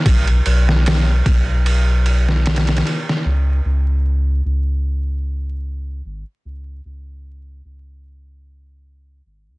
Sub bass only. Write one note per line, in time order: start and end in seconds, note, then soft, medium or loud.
0.06 0.41 B1 loud
0.46 1.22 B1 loud
1.26 2.82 B1 medium
3.26 3.61 C#2 medium
3.65 4.41 C#2 loud
4.45 6.01 C#2 medium
6.05 6.24 G#1 loud
6.45 6.81 C#2 medium
6.85 7.61 C#2 medium
7.65 9.21 C#2 medium
9.26 9.48 G#1 medium
9.47 9.58 E2 medium